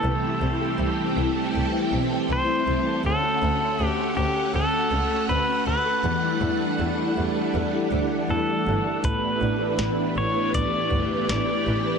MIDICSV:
0, 0, Header, 1, 6, 480
1, 0, Start_track
1, 0, Tempo, 750000
1, 24, Time_signature, 4, 2, 24, 8
1, 7671, End_track
2, 0, Start_track
2, 0, Title_t, "Pedal steel guitar"
2, 0, Program_c, 0, 26
2, 0, Note_on_c, 0, 69, 76
2, 1209, Note_off_c, 0, 69, 0
2, 1488, Note_on_c, 0, 72, 88
2, 1958, Note_off_c, 0, 72, 0
2, 1960, Note_on_c, 0, 69, 82
2, 2466, Note_off_c, 0, 69, 0
2, 2466, Note_on_c, 0, 67, 82
2, 2667, Note_off_c, 0, 67, 0
2, 2667, Note_on_c, 0, 67, 76
2, 2889, Note_off_c, 0, 67, 0
2, 2916, Note_on_c, 0, 69, 81
2, 3385, Note_off_c, 0, 69, 0
2, 3387, Note_on_c, 0, 71, 84
2, 3623, Note_off_c, 0, 71, 0
2, 3631, Note_on_c, 0, 71, 71
2, 5042, Note_off_c, 0, 71, 0
2, 5315, Note_on_c, 0, 69, 66
2, 5790, Note_on_c, 0, 71, 79
2, 5804, Note_off_c, 0, 69, 0
2, 6511, Note_off_c, 0, 71, 0
2, 6513, Note_on_c, 0, 73, 83
2, 6747, Note_off_c, 0, 73, 0
2, 6750, Note_on_c, 0, 74, 93
2, 7224, Note_off_c, 0, 74, 0
2, 7232, Note_on_c, 0, 74, 77
2, 7671, Note_off_c, 0, 74, 0
2, 7671, End_track
3, 0, Start_track
3, 0, Title_t, "Clean electric guitar"
3, 0, Program_c, 1, 27
3, 0, Note_on_c, 1, 62, 51
3, 0, Note_on_c, 1, 64, 49
3, 0, Note_on_c, 1, 71, 56
3, 23, Note_on_c, 1, 48, 74
3, 73, Note_off_c, 1, 62, 0
3, 74, Note_off_c, 1, 71, 0
3, 140, Note_off_c, 1, 64, 0
3, 143, Note_on_c, 1, 64, 52
3, 262, Note_on_c, 1, 60, 53
3, 383, Note_on_c, 1, 69, 54
3, 494, Note_off_c, 1, 64, 0
3, 502, Note_on_c, 1, 64, 54
3, 614, Note_off_c, 1, 60, 0
3, 622, Note_on_c, 1, 60, 50
3, 736, Note_off_c, 1, 64, 0
3, 744, Note_on_c, 1, 64, 54
3, 856, Note_off_c, 1, 69, 0
3, 859, Note_on_c, 1, 69, 56
3, 984, Note_off_c, 1, 48, 0
3, 1093, Note_off_c, 1, 64, 0
3, 1101, Note_on_c, 1, 64, 51
3, 1210, Note_off_c, 1, 60, 0
3, 1218, Note_on_c, 1, 60, 53
3, 1339, Note_off_c, 1, 69, 0
3, 1342, Note_on_c, 1, 69, 56
3, 1452, Note_off_c, 1, 64, 0
3, 1460, Note_on_c, 1, 64, 50
3, 1574, Note_off_c, 1, 60, 0
3, 1581, Note_on_c, 1, 60, 50
3, 1693, Note_off_c, 1, 64, 0
3, 1701, Note_on_c, 1, 64, 54
3, 1817, Note_off_c, 1, 69, 0
3, 1820, Note_on_c, 1, 69, 61
3, 1942, Note_on_c, 1, 50, 73
3, 1991, Note_off_c, 1, 60, 0
3, 1991, Note_off_c, 1, 64, 0
3, 2063, Note_on_c, 1, 66, 53
3, 2182, Note_on_c, 1, 61, 51
3, 2302, Note_off_c, 1, 69, 0
3, 2305, Note_on_c, 1, 69, 60
3, 2427, Note_off_c, 1, 66, 0
3, 2429, Note_on_c, 1, 66, 52
3, 2540, Note_off_c, 1, 61, 0
3, 2548, Note_on_c, 1, 61, 48
3, 2783, Note_off_c, 1, 69, 0
3, 2785, Note_on_c, 1, 69, 51
3, 3026, Note_off_c, 1, 66, 0
3, 3028, Note_on_c, 1, 66, 46
3, 3143, Note_off_c, 1, 61, 0
3, 3150, Note_on_c, 1, 61, 56
3, 3170, Note_off_c, 1, 50, 0
3, 3265, Note_off_c, 1, 69, 0
3, 3267, Note_on_c, 1, 69, 57
3, 3387, Note_off_c, 1, 66, 0
3, 3389, Note_on_c, 1, 66, 53
3, 3502, Note_off_c, 1, 61, 0
3, 3510, Note_on_c, 1, 61, 47
3, 3625, Note_off_c, 1, 66, 0
3, 3628, Note_on_c, 1, 66, 51
3, 3741, Note_off_c, 1, 69, 0
3, 3744, Note_on_c, 1, 69, 60
3, 3863, Note_on_c, 1, 52, 72
3, 3915, Note_off_c, 1, 61, 0
3, 3980, Note_off_c, 1, 66, 0
3, 3983, Note_on_c, 1, 64, 50
3, 4100, Note_on_c, 1, 62, 58
3, 4215, Note_off_c, 1, 69, 0
3, 4217, Note_on_c, 1, 69, 57
3, 4340, Note_off_c, 1, 64, 0
3, 4343, Note_on_c, 1, 64, 54
3, 4458, Note_off_c, 1, 62, 0
3, 4461, Note_on_c, 1, 62, 53
3, 4581, Note_off_c, 1, 64, 0
3, 4584, Note_on_c, 1, 64, 56
3, 4702, Note_off_c, 1, 69, 0
3, 4704, Note_on_c, 1, 69, 58
3, 4822, Note_off_c, 1, 52, 0
3, 4824, Note_on_c, 1, 52, 65
3, 4944, Note_off_c, 1, 64, 0
3, 4947, Note_on_c, 1, 64, 47
3, 5066, Note_off_c, 1, 62, 0
3, 5068, Note_on_c, 1, 62, 52
3, 5187, Note_off_c, 1, 69, 0
3, 5189, Note_on_c, 1, 69, 57
3, 5306, Note_off_c, 1, 64, 0
3, 5308, Note_on_c, 1, 64, 50
3, 5421, Note_off_c, 1, 62, 0
3, 5424, Note_on_c, 1, 62, 49
3, 5541, Note_off_c, 1, 64, 0
3, 5544, Note_on_c, 1, 64, 49
3, 5662, Note_off_c, 1, 69, 0
3, 5665, Note_on_c, 1, 69, 58
3, 5786, Note_on_c, 1, 45, 74
3, 5906, Note_off_c, 1, 64, 0
3, 5909, Note_on_c, 1, 64, 53
3, 5928, Note_off_c, 1, 62, 0
3, 6025, Note_on_c, 1, 62, 52
3, 6044, Note_off_c, 1, 52, 0
3, 6137, Note_off_c, 1, 69, 0
3, 6140, Note_on_c, 1, 71, 57
3, 6261, Note_off_c, 1, 64, 0
3, 6264, Note_on_c, 1, 64, 56
3, 6374, Note_off_c, 1, 62, 0
3, 6381, Note_on_c, 1, 62, 47
3, 6498, Note_off_c, 1, 64, 0
3, 6501, Note_on_c, 1, 64, 53
3, 6614, Note_off_c, 1, 71, 0
3, 6621, Note_on_c, 1, 71, 58
3, 6736, Note_off_c, 1, 45, 0
3, 6743, Note_on_c, 1, 45, 69
3, 6861, Note_off_c, 1, 64, 0
3, 6863, Note_on_c, 1, 64, 49
3, 6980, Note_off_c, 1, 62, 0
3, 6988, Note_on_c, 1, 62, 53
3, 7095, Note_off_c, 1, 71, 0
3, 7103, Note_on_c, 1, 71, 57
3, 7217, Note_off_c, 1, 64, 0
3, 7220, Note_on_c, 1, 64, 52
3, 7334, Note_off_c, 1, 62, 0
3, 7342, Note_on_c, 1, 62, 46
3, 7457, Note_off_c, 1, 64, 0
3, 7459, Note_on_c, 1, 64, 51
3, 7576, Note_off_c, 1, 71, 0
3, 7584, Note_on_c, 1, 71, 57
3, 7671, Note_off_c, 1, 45, 0
3, 7671, Note_off_c, 1, 62, 0
3, 7671, Note_off_c, 1, 64, 0
3, 7671, Note_off_c, 1, 71, 0
3, 7671, End_track
4, 0, Start_track
4, 0, Title_t, "String machine"
4, 0, Program_c, 2, 50
4, 0, Note_on_c, 2, 57, 62
4, 27, Note_on_c, 2, 60, 72
4, 29, Note_on_c, 2, 55, 69
4, 31, Note_on_c, 2, 52, 72
4, 32, Note_on_c, 2, 67, 81
4, 1927, Note_off_c, 2, 60, 0
4, 1928, Note_off_c, 2, 55, 0
4, 1929, Note_off_c, 2, 52, 0
4, 1929, Note_off_c, 2, 67, 0
4, 1949, Note_on_c, 2, 78, 76
4, 1951, Note_on_c, 2, 61, 66
4, 3848, Note_off_c, 2, 61, 0
4, 3870, Note_on_c, 2, 55, 68
4, 3871, Note_on_c, 2, 52, 75
4, 3872, Note_on_c, 2, 62, 68
4, 5761, Note_off_c, 2, 78, 0
4, 5768, Note_off_c, 2, 55, 0
4, 5769, Note_off_c, 2, 62, 0
4, 5791, Note_on_c, 2, 62, 70
4, 5794, Note_on_c, 2, 59, 66
4, 5795, Note_on_c, 2, 67, 81
4, 7671, Note_off_c, 2, 52, 0
4, 7671, Note_off_c, 2, 57, 0
4, 7671, Note_off_c, 2, 59, 0
4, 7671, Note_off_c, 2, 62, 0
4, 7671, Note_off_c, 2, 67, 0
4, 7671, End_track
5, 0, Start_track
5, 0, Title_t, "Double bass"
5, 0, Program_c, 3, 43
5, 24, Note_on_c, 3, 36, 91
5, 75, Note_off_c, 3, 36, 0
5, 261, Note_on_c, 3, 36, 82
5, 312, Note_off_c, 3, 36, 0
5, 503, Note_on_c, 3, 36, 87
5, 554, Note_off_c, 3, 36, 0
5, 747, Note_on_c, 3, 36, 86
5, 798, Note_off_c, 3, 36, 0
5, 992, Note_on_c, 3, 36, 76
5, 1043, Note_off_c, 3, 36, 0
5, 1228, Note_on_c, 3, 35, 77
5, 1279, Note_off_c, 3, 35, 0
5, 1468, Note_on_c, 3, 36, 77
5, 1519, Note_off_c, 3, 36, 0
5, 1708, Note_on_c, 3, 36, 74
5, 1759, Note_off_c, 3, 36, 0
5, 1946, Note_on_c, 3, 38, 81
5, 1997, Note_off_c, 3, 38, 0
5, 2190, Note_on_c, 3, 38, 92
5, 2241, Note_off_c, 3, 38, 0
5, 2430, Note_on_c, 3, 38, 84
5, 2481, Note_off_c, 3, 38, 0
5, 2668, Note_on_c, 3, 38, 81
5, 2719, Note_off_c, 3, 38, 0
5, 2905, Note_on_c, 3, 38, 85
5, 2956, Note_off_c, 3, 38, 0
5, 3144, Note_on_c, 3, 37, 79
5, 3195, Note_off_c, 3, 37, 0
5, 3384, Note_on_c, 3, 38, 83
5, 3435, Note_off_c, 3, 38, 0
5, 3622, Note_on_c, 3, 38, 76
5, 3673, Note_off_c, 3, 38, 0
5, 3862, Note_on_c, 3, 40, 91
5, 3914, Note_off_c, 3, 40, 0
5, 4103, Note_on_c, 3, 40, 89
5, 4154, Note_off_c, 3, 40, 0
5, 4346, Note_on_c, 3, 40, 85
5, 4397, Note_off_c, 3, 40, 0
5, 4589, Note_on_c, 3, 40, 75
5, 4640, Note_off_c, 3, 40, 0
5, 4828, Note_on_c, 3, 40, 85
5, 4879, Note_off_c, 3, 40, 0
5, 5065, Note_on_c, 3, 38, 78
5, 5116, Note_off_c, 3, 38, 0
5, 5306, Note_on_c, 3, 40, 78
5, 5357, Note_off_c, 3, 40, 0
5, 5550, Note_on_c, 3, 31, 80
5, 5601, Note_off_c, 3, 31, 0
5, 5787, Note_on_c, 3, 33, 85
5, 5838, Note_off_c, 3, 33, 0
5, 6025, Note_on_c, 3, 33, 86
5, 6076, Note_off_c, 3, 33, 0
5, 6264, Note_on_c, 3, 33, 89
5, 6315, Note_off_c, 3, 33, 0
5, 6504, Note_on_c, 3, 33, 82
5, 6555, Note_off_c, 3, 33, 0
5, 6745, Note_on_c, 3, 33, 74
5, 6796, Note_off_c, 3, 33, 0
5, 6985, Note_on_c, 3, 31, 77
5, 7036, Note_off_c, 3, 31, 0
5, 7226, Note_on_c, 3, 33, 87
5, 7278, Note_off_c, 3, 33, 0
5, 7468, Note_on_c, 3, 33, 83
5, 7519, Note_off_c, 3, 33, 0
5, 7671, End_track
6, 0, Start_track
6, 0, Title_t, "Drums"
6, 5785, Note_on_c, 9, 36, 104
6, 5785, Note_on_c, 9, 42, 65
6, 5849, Note_off_c, 9, 36, 0
6, 5849, Note_off_c, 9, 42, 0
6, 6263, Note_on_c, 9, 42, 55
6, 6264, Note_on_c, 9, 38, 92
6, 6327, Note_off_c, 9, 42, 0
6, 6328, Note_off_c, 9, 38, 0
6, 6746, Note_on_c, 9, 36, 69
6, 6748, Note_on_c, 9, 42, 63
6, 6810, Note_off_c, 9, 36, 0
6, 6812, Note_off_c, 9, 42, 0
6, 6986, Note_on_c, 9, 36, 76
6, 7050, Note_off_c, 9, 36, 0
6, 7227, Note_on_c, 9, 38, 89
6, 7229, Note_on_c, 9, 42, 66
6, 7291, Note_off_c, 9, 38, 0
6, 7293, Note_off_c, 9, 42, 0
6, 7671, End_track
0, 0, End_of_file